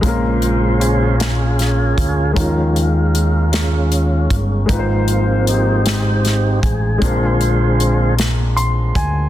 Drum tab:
HH |xxxxxx|xxxxxx|xxxxxx|xxxxxx|
SD |---oo-|---o--|---oo-|---o--|
BD |o----o|o----o|o----o|o----o|